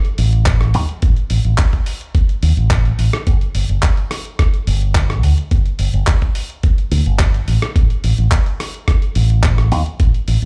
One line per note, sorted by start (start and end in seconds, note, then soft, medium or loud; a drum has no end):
0.05 closed hi-hat soft
0.18 0.75 A1 medium
0.18 open hi-hat loud
0.33 closed hi-hat soft
0.46 kick loud
0.46 clap loud
0.46 closed hi-hat medium
0.61 cross-stick medium
0.61 closed hi-hat soft
0.74 0.84 D#2 medium
0.74 open hi-hat loud
0.89 closed hi-hat soft
1.02 1.12 A1 medium
1.02 kick loud
1.02 closed hi-hat medium
1.16 closed hi-hat soft
1.30 1.39 A1 medium
1.30 open hi-hat loud
1.45 1.53 A1 medium
1.45 closed hi-hat soft
1.58 kick loud
1.58 clap loud
1.58 closed hi-hat medium
1.73 kick medium
1.73 closed hi-hat soft
1.86 open hi-hat loud
2.01 closed hi-hat soft
2.15 kick loud
2.15 closed hi-hat medium
2.29 closed hi-hat soft
2.43 2.52 D#2 medium
2.43 open hi-hat loud
2.57 2.91 A1 medium
2.57 closed hi-hat soft
2.71 kick loud
2.71 clap loud
2.71 closed hi-hat medium
2.85 closed hi-hat soft
2.99 3.08 A1 medium
2.99 open hi-hat loud
3.13 cross-stick medium
3.13 closed hi-hat soft
3.27 3.36 G1 medium
3.27 kick loud
3.27 closed hi-hat medium
3.41 closed hi-hat soft
3.55 3.64 G1 medium
3.55 open hi-hat loud
3.69 3.78 G1 medium
3.69 closed hi-hat soft
3.82 kick loud
3.82 clap loud
3.82 closed hi-hat medium
3.97 closed hi-hat soft
4.11 cross-stick medium
4.11 open hi-hat loud
4.25 closed hi-hat soft
4.39 kick loud
4.39 cross-stick medium
4.39 closed hi-hat medium
4.54 closed hi-hat soft
4.67 5.23 G1 medium
4.67 open hi-hat loud
4.82 closed hi-hat soft
4.95 kick loud
4.95 clap loud
4.95 closed hi-hat medium
5.10 cross-stick medium
5.10 closed hi-hat soft
5.23 5.32 D2 medium
5.23 open hi-hat loud
5.38 closed hi-hat soft
5.51 5.60 G1 medium
5.51 kick loud
5.51 closed hi-hat medium
5.66 closed hi-hat soft
5.79 5.88 G1 medium
5.79 open hi-hat medium
5.94 6.02 G1 medium
5.94 closed hi-hat soft
6.07 kick loud
6.07 clap loud
6.07 closed hi-hat medium
6.22 kick medium
6.22 closed hi-hat soft
6.35 open hi-hat loud
6.50 closed hi-hat soft
6.63 kick loud
6.63 closed hi-hat medium
6.78 closed hi-hat soft
6.91 7.00 D2 medium
6.91 open hi-hat loud
7.06 7.39 G1 medium
7.06 closed hi-hat soft
7.19 kick loud
7.19 clap loud
7.19 closed hi-hat medium
7.34 closed hi-hat soft
7.48 7.57 A1 medium
7.48 open hi-hat loud
7.62 cross-stick medium
7.62 closed hi-hat soft
7.76 7.85 A1 loud
7.76 kick loud
7.76 closed hi-hat medium
7.90 closed hi-hat soft
8.04 8.13 A1 medium
8.04 open hi-hat loud
8.18 8.27 A1 medium
8.18 closed hi-hat soft
8.31 kick loud
8.31 clap loud
8.31 closed hi-hat medium
8.46 closed hi-hat soft
8.60 cross-stick medium
8.60 open hi-hat loud
8.74 closed hi-hat soft
8.88 kick loud
8.88 cross-stick medium
8.88 closed hi-hat loud
9.02 closed hi-hat soft
9.15 9.72 A1 medium
9.15 open hi-hat medium
9.30 closed hi-hat soft
9.43 kick loud
9.43 clap loud
9.43 closed hi-hat medium
9.58 cross-stick medium
9.58 closed hi-hat soft
9.72 9.81 D#2 medium
9.72 open hi-hat loud
9.86 closed hi-hat soft
10.00 10.09 A1 medium
10.00 kick loud
10.00 closed hi-hat loud
10.14 closed hi-hat soft
10.28 10.37 A1 medium
10.28 open hi-hat medium